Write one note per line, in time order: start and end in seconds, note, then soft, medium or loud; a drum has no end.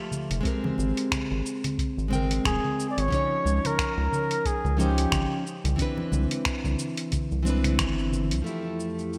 0.00 0.40 F3 medium
0.00 0.40 A3 medium
0.00 0.43 G4 medium
0.00 0.42 E5 medium
0.11 low conga medium
0.11 shaker medium
0.30 0.41 F1 medium
0.30 closed hi-hat soft
0.30 shaker soft
0.41 2.06 G#3 medium
0.41 2.07 C4 medium
0.41 kick loud
0.45 2.08 G4 medium
0.45 2.09 A#4 medium
0.45 closed hi-hat soft
0.45 shaker soft
0.64 low conga medium
0.78 0.93 G#1 medium
0.78 high conga medium
0.78 shaker medium
0.97 closed hi-hat soft
0.97 shaker soft
1.11 finger snap medium
1.11 kick medium
1.11 closed hi-hat soft
1.11 low conga medium
1.11 shaker soft
1.31 1.42 G#1 medium
1.46 shaker medium
1.64 closed hi-hat medium
1.64 low conga medium
1.64 shaker soft
1.78 kick loud
1.78 closed hi-hat soft
1.78 shaker soft
1.97 2.40 G#1 medium
1.97 shaker soft
2.08 3.07 G#3 medium
2.08 3.08 C4 medium
2.08 high conga medium
2.08 low conga medium
2.13 3.10 A#4 medium
2.13 3.09 G5 medium
2.13 shaker medium
2.31 closed hi-hat medium
2.31 shaker soft
2.45 2.59 D#1 medium
2.45 2.87 G#4 loud
2.45 finger snap medium
2.45 kick loud
2.45 closed hi-hat soft
2.45 low conga medium
2.45 shaker soft
2.64 low conga medium
2.80 shaker medium
2.91 3.02 D5 medium
2.98 3.08 G#1 loud
2.98 3.68 C#5 loud
2.98 closed hi-hat medium
2.98 shaker soft
3.08 4.73 F3 medium
3.08 4.74 C#4 medium
3.08 kick loud
3.12 4.75 D#4 medium
3.12 4.76 C#5 medium
3.12 closed hi-hat soft
3.12 low conga medium
3.12 shaker soft
3.45 3.60 C#2 medium
3.45 high conga medium
3.45 shaker medium
3.65 4.48 A#4 medium
3.65 closed hi-hat medium
3.65 low conga medium
3.65 shaker soft
3.78 finger snap medium
3.78 kick loud
3.78 closed hi-hat soft
3.78 shaker soft
3.97 4.08 C#2 loud
4.13 low conga medium
4.13 shaker medium
4.31 closed hi-hat medium
4.31 shaker soft
4.45 4.79 G#4 medium
4.45 kick loud
4.45 closed hi-hat soft
4.45 shaker soft
4.64 5.06 C#2 medium
4.64 low conga medium
4.64 shaker soft
4.77 5.43 F3 medium
4.77 5.43 C#4 medium
4.77 5.44 D#4 medium
4.77 5.42 G4 medium
4.77 5.44 C5 medium
4.77 high conga medium
4.77 low conga medium
4.77 shaker medium
4.98 closed hi-hat medium
4.98 shaker soft
5.12 5.26 G#1 loud
5.12 finger snap loud
5.12 kick loud
5.12 closed hi-hat soft
5.12 low conga medium
5.12 shaker soft
5.47 shaker medium
5.64 5.75 C2 loud
5.64 closed hi-hat medium
5.64 low conga medium
5.64 shaker soft
5.76 7.41 E3 medium
5.76 7.42 C4 medium
5.76 kick medium
5.76 closed hi-hat soft
5.76 shaker soft
5.80 7.43 D4 medium
5.80 7.44 B4 medium
5.97 low conga medium
6.12 6.26 C2 medium
6.12 high conga medium
6.12 low conga medium
6.12 shaker medium
6.31 closed hi-hat medium
6.31 shaker soft
6.45 finger snap medium
6.45 kick loud
6.45 closed hi-hat soft
6.45 shaker soft
6.64 6.75 C2 medium
6.64 low conga medium
6.64 shaker soft
6.79 shaker medium
6.97 closed hi-hat medium
6.97 shaker soft
7.12 kick loud
7.12 closed hi-hat soft
7.12 low conga medium
7.12 shaker soft
7.31 7.80 C2 medium
7.31 shaker soft
7.43 8.41 E3 medium
7.43 8.42 C4 medium
7.43 high conga medium
7.43 shaker medium
7.47 8.43 D4 medium
7.47 8.44 B4 medium
7.64 finger snap soft
7.64 closed hi-hat medium
7.64 low conga medium
7.64 shaker soft
7.79 8.33 G1 medium
7.79 finger snap loud
7.79 kick loud
7.79 closed hi-hat soft
7.79 low conga medium
7.79 shaker soft
7.99 shaker soft
8.12 low conga medium
8.12 shaker medium
8.31 8.42 C2 medium
8.31 closed hi-hat medium
8.31 shaker soft
8.42 9.18 F3 medium
8.42 9.18 A3 medium
8.46 9.18 F2 medium
8.46 9.18 A3 medium
8.46 9.18 E4 medium
8.46 9.18 G4 medium
8.46 shaker soft
8.80 shaker medium
8.99 shaker soft
9.13 shaker soft